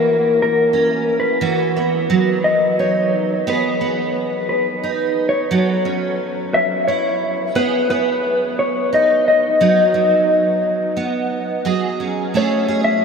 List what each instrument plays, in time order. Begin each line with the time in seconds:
Already playing: steel-string acoustic guitar E3 A#3 F#4, clean electric guitar A#4
0.42 clean electric guitar A#4
0.73 steel-string acoustic guitar C#4
1.20 clean electric guitar B4
1.41 steel-string acoustic guitar E3 F#4
1.77 steel-string acoustic guitar B3
2.10 steel-string acoustic guitar F#3
2.44 clean electric guitar D#5
2.79 steel-string acoustic guitar D#4, clean electric guitar C#5
3.47 steel-string acoustic guitar B3 G#4, clean electric guitar B4
3.81 steel-string acoustic guitar B3
4.49 clean electric guitar B4
4.83 steel-string acoustic guitar D#4
5.29 clean electric guitar C#5
5.51 steel-string acoustic guitar F#3 A4
5.85 steel-string acoustic guitar C#4
6.54 clean electric guitar E5
6.88 steel-string acoustic guitar E4, clean electric guitar C#5
7.55 steel-string acoustic guitar B3 G#4, clean electric guitar B4
7.90 steel-string acoustic guitar B3, clean electric guitar B4
8.59 clean electric guitar C#5
8.93 steel-string acoustic guitar D#4, clean electric guitar D#5
9.28 clean electric guitar D#5
9.61 steel-string acoustic guitar F#3 D#4
9.94 steel-string acoustic guitar F#3
10.97 steel-string acoustic guitar B3
11.65 steel-string acoustic guitar F#3 G#4
12.00 steel-string acoustic guitar C#4
12.34 steel-string acoustic guitar A3 C#4 G#4, clean electric guitar C#5
12.68 steel-string acoustic guitar G#4
12.84 clean electric guitar E5